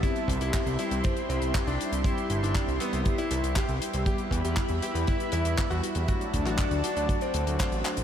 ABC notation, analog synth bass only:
X:1
M:4/4
L:1/16
Q:1/4=119
K:Clyd
V:1 name="Analog synth bass" clef=bass
z2 C,, C,, z C,, z C,, z2 C,, C,, z C,, z C,, | z2 G,,, G,,, z C,, z C,, z2 C,, C,, z C,, z C,, | z2 E,, E,, z E,, z E,, z2 E,, E,, z E,, z E,, | z2 D,, A,,, z D,, z D,, z2 D,, D,, z A,,, z A,,, |]